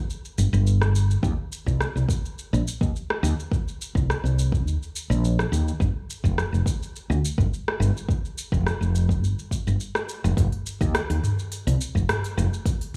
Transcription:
0.10 shaker
0.25 shaker
0.38 G1, shaker
0.53 G1, shaker
0.67 shaker
0.82 cross-stick, shaker
0.95 shaker
1.11 shaker
1.23 D#2, kick, shaker
1.52 shaker
1.66 C2, kick, shaker
1.81 cross-stick, shaker
1.96 C2, shaker
2.09 kick, shaker
2.25 shaker
2.39 shaker
2.53 A#1, shaker
2.68 shaker
2.81 D#2, kick, shaker
2.96 shaker
3.10 cross-stick
3.23 D#2, shaker
3.40 shaker
3.52 kick, shaker
3.68 shaker
3.82 shaker
3.95 C2, kick, shaker
4.10 cross-stick, shaker
4.24 C2, shaker
4.39 shaker
4.52 kick, shaker
4.66 D#2, shaker
4.83 shaker
4.96 shaker
5.10 A#1, shaker
5.25 shaker
5.39 cross-stick, shaker
5.52 D#2, shaker
5.68 shaker
5.80 G1, kick, shaker
6.10 shaker
6.24 F1, kick, shaker
6.38 cross-stick, shaker
6.52 F1, shaker
6.66 kick, shaker
6.83 shaker
6.96 shaker
7.10 D2, shaker
7.25 shaker
7.38 G1, kick, shaker
7.54 shaker
7.68 cross-stick
7.80 G1, shaker
7.97 shaker
8.09 kick, shaker
8.25 shaker
8.38 shaker
8.52 F1, kick, shaker
8.67 cross-stick, shaker
8.81 F1, shaker
8.95 shaker
9.09 kick, shaker
9.23 G1, shaker
9.39 shaker
9.51 kick, shaker
9.67 G1, shaker
9.80 shaker
9.95 cross-stick, shaker
10.09 shaker
10.24 F1, shaker
10.37 F1, kick, mid tom, open hi-hat, shaker
10.52 open hi-hat
10.66 shaker
10.81 D#2, kick, open hi-hat, shaker
10.95 cross-stick, open hi-hat, shaker
11.10 D#2, open hi-hat
11.24 mid tom, shaker
11.39 shaker
11.52 open hi-hat, shaker
11.67 C2, open hi-hat, shaker
11.81 shaker
11.95 F1, kick, shaker
12.09 cross-stick, mid tom, open hi-hat, shaker
12.24 open hi-hat, shaker
12.37 F1, shaker
12.53 shaker
12.66 kick, open hi-hat, shaker
12.81 open hi-hat

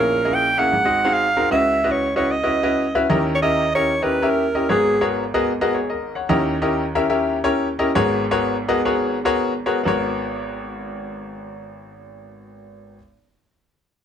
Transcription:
Already playing: A#1 A#2 A#3 C#4 E4 G#4 A#4 C#5
0.25 A#3 C#4 E4 G#4 D#5
0.35 G5
0.57 A#3 C#4 E4 G#4 E5 F#5
0.72 G#1 G#2
0.85 C4 D#4 F#4 G#4 D#5
1.05 C4 D#4 F#4 G#4 F5
1.13 F5
1.37 C4 D#4 F#4 G#4 A#4
1.51 C#2 C#3 C#4 E4 F#4 B4 D#5 E5
1.84 C#4 E4 F#4 B4 D#5
1.91 C#5
2.16 C#4 E4 F#4 B4 C#5 D#5
2.31 D#5
2.43 C#4 E4 F#4 B4 D#5
2.63 C#4 E4 F#4 B4 D#5
2.95 C#4 E4 F#4 B4 E5
3.10 D#2 D#3 C#4 E4 G4 A#4 D#5
3.35 C#5
3.42 C#4 E4 G4 A#4 D#5 E5
3.75 C#4 E4 G4 A#4 C#5 D#5
4.02 C#4 E4 G4 A#4 B4 D#5
4.22 C#4 E4 G4 A#4 E5
4.30 A#4
4.55 C#4 E4 G4 A#4 D#5
4.69 G#1 G#2 B3 F#4 G#4 A#4 C#5
5.01 B3 F#4 G#4 A#4 C#5
5.34 B3 F#4 G#4 A#4 D#5
5.61 B3 F#4 G#4 A#4 D#5
5.75 G#4 C#5
5.90 A#4 D#5
6.15 C#5 F#5
6.29 D#2 D#3 C#4 E4 G4 A#4 D#5
6.62 C#4 E4 G4 A#4 D#5
6.95 C#4 E4 G4 A#4 E5
7.10 C#4 E4 G4 A#4 E5
7.44 C#4 E4 G4 A#4 C#5
7.79 C#4 E4 G4 A#4 D#5
7.95 G#1 G#2 B3 F#4 G#4 A#4 C#5
8.31 B3 F#4 G#4 A#4 C#5
8.68 B3 F#4 G#4 A#4 D#5
8.85 B3 F#4 G#4 A#4 C#5
9.25 B3 F#4 G#4 A#4 C#5
9.66 B3 F#4 G#4 A#4 C#5
9.83 G#1 B3 F#4 A#4 C#5

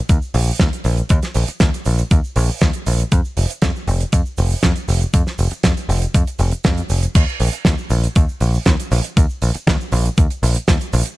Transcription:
0.09 D#2, kick, closed hi-hat, shaker
0.22 shaker
0.34 A#1, open hi-hat, shaker
0.46 shaker
0.60 D#2, kick, snare, closed hi-hat, shaker
0.73 closed hi-hat, shaker
0.84 A#1, open hi-hat, shaker
0.97 closed hi-hat, shaker
1.09 D#2, kick, closed hi-hat, shaker
1.22 snare, closed hi-hat, shaker
1.34 A#1, open hi-hat, shaker
1.48 muted picked electric bass stroke, closed hi-hat, shaker
1.60 D#2, kick, snare, closed hi-hat, shaker
1.74 closed hi-hat, shaker
1.85 A#1, open hi-hat, shaker
1.99 closed hi-hat, shaker
2.11 D#2, kick, closed hi-hat, shaker
2.24 shaker
2.36 A#1, open hi-hat, shaker
2.49 muted picked electric bass stroke, shaker
2.61 D#2, kick, snare, closed hi-hat, shaker
2.73 closed hi-hat, shaker
2.86 A#1, open hi-hat, shaker
3.00 closed hi-hat, shaker
3.12 F2, kick, closed hi-hat, shaker
3.25 shaker
3.37 F1, open hi-hat, shaker
3.50 closed hi-hat, shaker
3.62 F2, kick, snare, closed hi-hat, shaker
3.75 shaker
3.87 F1, open hi-hat, shaker
4.00 closed hi-hat, shaker
4.12 F2, kick, closed hi-hat, shaker
4.26 shaker
4.37 F1, open hi-hat, shaker
4.51 shaker
4.63 F2, kick, snare, closed hi-hat, shaker
4.76 closed hi-hat, shaker
4.88 F1, open hi-hat, shaker
5.01 closed hi-hat, shaker
5.13 F2, kick, closed hi-hat, shaker
5.27 snare, shaker
5.38 F1, open hi-hat, shaker
5.51 muted picked electric bass stroke, closed hi-hat, shaker
5.63 F2, kick, snare, closed hi-hat, shaker
5.77 closed hi-hat, shaker
5.89 F1, open hi-hat, shaker
6.02 closed hi-hat, shaker
6.14 F2, kick, closed hi-hat, shaker
6.27 closed hi-hat, shaker
6.39 F1, open hi-hat, shaker
6.51 muted picked electric bass stroke, closed hi-hat, shaker
6.64 F2, kick, snare, closed hi-hat, shaker
6.77 closed hi-hat, shaker
6.89 F1, open hi-hat, shaker
7.02 closed hi-hat, shaker
7.15 D#2, kick, closed hi-hat, crash, shaker
7.28 shaker
7.40 A#1, open hi-hat, shaker
7.53 closed hi-hat, shaker
7.65 D#2, kick, snare, closed hi-hat, shaker
7.78 shaker
7.90 A#1, open hi-hat, shaker
8.03 closed hi-hat, shaker
8.15 D#2, kick, closed hi-hat, shaker
8.29 shaker
8.40 A#1, open hi-hat, shaker
8.54 shaker
8.66 D#2, kick, snare, closed hi-hat, shaker
8.80 closed hi-hat, shaker
8.92 A#1, open hi-hat, shaker
9.04 closed hi-hat, shaker
9.17 D#2, kick, closed hi-hat, shaker
9.30 shaker
9.42 A#1, open hi-hat, shaker
9.55 muted picked electric bass stroke, closed hi-hat, shaker
9.67 D#2, kick, snare, closed hi-hat, shaker
9.81 shaker
9.92 A#1, open hi-hat, shaker
10.06 closed hi-hat, shaker
10.17 D#2, kick, closed hi-hat, shaker
10.30 closed hi-hat, shaker
10.43 A#1, open hi-hat, shaker
10.55 muted picked electric bass stroke, closed hi-hat, shaker
10.67 D#2, kick, snare, closed hi-hat, shaker
10.80 closed hi-hat, shaker
10.93 A#1, open hi-hat, shaker
11.05 closed hi-hat, shaker

